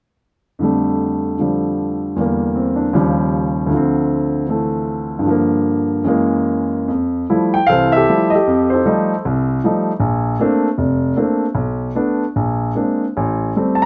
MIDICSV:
0, 0, Header, 1, 2, 480
1, 0, Start_track
1, 0, Key_signature, -1, "major"
1, 0, Tempo, 394477
1, 741, Time_signature, 4, 2, 24, 8
1, 2183, Tempo, 384615
1, 6023, Tempo, 404313
1, 8903, Tempo, 388098
1, 14663, Tempo, 400267
1, 16943, End_track
2, 0, Start_track
2, 0, Title_t, "Grand piano"
2, 0, Program_c, 0, 0
2, 717, Note_on_c, 0, 41, 44
2, 732, Note_on_c, 0, 50, 39
2, 759, Note_on_c, 0, 55, 40
2, 773, Note_on_c, 0, 57, 47
2, 1669, Note_off_c, 0, 50, 0
2, 1687, Note_on_c, 0, 50, 33
2, 1702, Note_on_c, 0, 53, 30
2, 1703, Note_off_c, 0, 55, 0
2, 1721, Note_on_c, 0, 55, 38
2, 2637, Note_off_c, 0, 50, 0
2, 2642, Note_on_c, 0, 40, 40
2, 2655, Note_off_c, 0, 41, 0
2, 2656, Note_off_c, 0, 55, 0
2, 2656, Note_on_c, 0, 50, 36
2, 2666, Note_off_c, 0, 53, 0
2, 2675, Note_on_c, 0, 55, 35
2, 2684, Note_off_c, 0, 57, 0
2, 2696, Note_on_c, 0, 58, 47
2, 3133, Note_on_c, 0, 60, 34
2, 3388, Note_on_c, 0, 62, 42
2, 3505, Note_off_c, 0, 60, 0
2, 3603, Note_on_c, 0, 49, 39
2, 3605, Note_on_c, 0, 39, 51
2, 3606, Note_off_c, 0, 40, 0
2, 3607, Note_off_c, 0, 55, 0
2, 3613, Note_off_c, 0, 50, 0
2, 3621, Note_on_c, 0, 53, 41
2, 3626, Note_on_c, 0, 55, 53
2, 3633, Note_off_c, 0, 58, 0
2, 3713, Note_off_c, 0, 62, 0
2, 4518, Note_on_c, 0, 38, 46
2, 4560, Note_off_c, 0, 49, 0
2, 4561, Note_off_c, 0, 39, 0
2, 4561, Note_on_c, 0, 50, 44
2, 4569, Note_off_c, 0, 53, 0
2, 4572, Note_off_c, 0, 55, 0
2, 4606, Note_on_c, 0, 53, 43
2, 4644, Note_on_c, 0, 60, 49
2, 5502, Note_off_c, 0, 50, 0
2, 5521, Note_on_c, 0, 50, 34
2, 5531, Note_on_c, 0, 52, 31
2, 5560, Note_on_c, 0, 57, 41
2, 6401, Note_on_c, 0, 43, 44
2, 6429, Note_off_c, 0, 50, 0
2, 6447, Note_on_c, 0, 50, 46
2, 6465, Note_off_c, 0, 38, 0
2, 6471, Note_off_c, 0, 53, 0
2, 6487, Note_off_c, 0, 52, 0
2, 6489, Note_on_c, 0, 53, 44
2, 6501, Note_off_c, 0, 57, 0
2, 6525, Note_off_c, 0, 60, 0
2, 6537, Note_on_c, 0, 58, 55
2, 7401, Note_off_c, 0, 43, 0
2, 7412, Note_on_c, 0, 42, 50
2, 7424, Note_off_c, 0, 50, 0
2, 7428, Note_on_c, 0, 52, 43
2, 7443, Note_off_c, 0, 58, 0
2, 7444, Note_on_c, 0, 56, 48
2, 7445, Note_off_c, 0, 53, 0
2, 7461, Note_on_c, 0, 58, 55
2, 8407, Note_off_c, 0, 42, 0
2, 8407, Note_on_c, 0, 41, 51
2, 8415, Note_off_c, 0, 52, 0
2, 8423, Note_off_c, 0, 56, 0
2, 8432, Note_off_c, 0, 58, 0
2, 8830, Note_off_c, 0, 41, 0
2, 8902, Note_on_c, 0, 53, 45
2, 8905, Note_on_c, 0, 57, 41
2, 8905, Note_on_c, 0, 64, 51
2, 8907, Note_on_c, 0, 55, 42
2, 9201, Note_on_c, 0, 79, 77
2, 9242, Note_off_c, 0, 53, 0
2, 9243, Note_off_c, 0, 57, 0
2, 9243, Note_off_c, 0, 64, 0
2, 9244, Note_off_c, 0, 55, 0
2, 9359, Note_on_c, 0, 77, 86
2, 9362, Note_off_c, 0, 79, 0
2, 9391, Note_on_c, 0, 69, 55
2, 9395, Note_on_c, 0, 52, 55
2, 9399, Note_on_c, 0, 36, 53
2, 9401, Note_on_c, 0, 72, 54
2, 9668, Note_off_c, 0, 77, 0
2, 9677, Note_on_c, 0, 76, 84
2, 9710, Note_off_c, 0, 69, 0
2, 9726, Note_on_c, 0, 67, 57
2, 9728, Note_on_c, 0, 69, 57
2, 9808, Note_off_c, 0, 52, 0
2, 9810, Note_off_c, 0, 36, 0
2, 9885, Note_on_c, 0, 53, 41
2, 9892, Note_on_c, 0, 55, 41
2, 9893, Note_on_c, 0, 57, 38
2, 9894, Note_on_c, 0, 64, 46
2, 10146, Note_on_c, 0, 75, 73
2, 10186, Note_off_c, 0, 69, 0
2, 10187, Note_off_c, 0, 67, 0
2, 10188, Note_off_c, 0, 76, 0
2, 10205, Note_on_c, 0, 69, 49
2, 10206, Note_on_c, 0, 67, 56
2, 10212, Note_off_c, 0, 53, 0
2, 10215, Note_off_c, 0, 55, 0
2, 10215, Note_off_c, 0, 57, 0
2, 10216, Note_off_c, 0, 64, 0
2, 10306, Note_off_c, 0, 72, 0
2, 10358, Note_on_c, 0, 41, 65
2, 10638, Note_on_c, 0, 72, 63
2, 10663, Note_off_c, 0, 75, 0
2, 10666, Note_off_c, 0, 69, 0
2, 10685, Note_on_c, 0, 69, 45
2, 10689, Note_on_c, 0, 63, 46
2, 10773, Note_off_c, 0, 41, 0
2, 10824, Note_off_c, 0, 63, 0
2, 10829, Note_on_c, 0, 57, 47
2, 10831, Note_on_c, 0, 55, 46
2, 10833, Note_on_c, 0, 53, 47
2, 10843, Note_on_c, 0, 63, 58
2, 11116, Note_off_c, 0, 67, 0
2, 11170, Note_off_c, 0, 57, 0
2, 11171, Note_off_c, 0, 55, 0
2, 11172, Note_off_c, 0, 53, 0
2, 11177, Note_off_c, 0, 63, 0
2, 11257, Note_off_c, 0, 72, 0
2, 11322, Note_on_c, 0, 36, 55
2, 11594, Note_off_c, 0, 69, 0
2, 11733, Note_off_c, 0, 36, 0
2, 11801, Note_on_c, 0, 53, 43
2, 11808, Note_on_c, 0, 57, 44
2, 11812, Note_on_c, 0, 55, 39
2, 11812, Note_on_c, 0, 63, 53
2, 12126, Note_off_c, 0, 53, 0
2, 12129, Note_off_c, 0, 57, 0
2, 12131, Note_off_c, 0, 55, 0
2, 12131, Note_off_c, 0, 63, 0
2, 12242, Note_on_c, 0, 34, 60
2, 12669, Note_off_c, 0, 34, 0
2, 12735, Note_on_c, 0, 57, 55
2, 12747, Note_on_c, 0, 60, 49
2, 12748, Note_on_c, 0, 58, 47
2, 12751, Note_on_c, 0, 62, 60
2, 13071, Note_off_c, 0, 57, 0
2, 13077, Note_off_c, 0, 58, 0
2, 13077, Note_off_c, 0, 60, 0
2, 13079, Note_off_c, 0, 62, 0
2, 13209, Note_on_c, 0, 29, 64
2, 13630, Note_off_c, 0, 29, 0
2, 13686, Note_on_c, 0, 57, 47
2, 13694, Note_on_c, 0, 62, 50
2, 13697, Note_on_c, 0, 60, 43
2, 13698, Note_on_c, 0, 58, 41
2, 14031, Note_off_c, 0, 57, 0
2, 14034, Note_off_c, 0, 62, 0
2, 14036, Note_off_c, 0, 58, 0
2, 14036, Note_off_c, 0, 60, 0
2, 14160, Note_on_c, 0, 35, 56
2, 14587, Note_off_c, 0, 35, 0
2, 14660, Note_on_c, 0, 57, 46
2, 14667, Note_on_c, 0, 59, 44
2, 14671, Note_on_c, 0, 62, 52
2, 14991, Note_off_c, 0, 57, 0
2, 14994, Note_off_c, 0, 59, 0
2, 14996, Note_off_c, 0, 62, 0
2, 15150, Note_on_c, 0, 34, 52
2, 15561, Note_off_c, 0, 34, 0
2, 15617, Note_on_c, 0, 56, 40
2, 15628, Note_on_c, 0, 60, 32
2, 15630, Note_on_c, 0, 58, 35
2, 15636, Note_on_c, 0, 62, 42
2, 15955, Note_off_c, 0, 56, 0
2, 15961, Note_off_c, 0, 60, 0
2, 15962, Note_off_c, 0, 58, 0
2, 15965, Note_off_c, 0, 62, 0
2, 16118, Note_on_c, 0, 33, 59
2, 16528, Note_off_c, 0, 33, 0
2, 16591, Note_on_c, 0, 57, 43
2, 16595, Note_on_c, 0, 55, 43
2, 16601, Note_on_c, 0, 60, 46
2, 16820, Note_on_c, 0, 81, 61
2, 16900, Note_off_c, 0, 81, 0
2, 16902, Note_on_c, 0, 82, 79
2, 16921, Note_off_c, 0, 57, 0
2, 16923, Note_off_c, 0, 55, 0
2, 16926, Note_off_c, 0, 60, 0
2, 16943, Note_off_c, 0, 82, 0
2, 16943, End_track
0, 0, End_of_file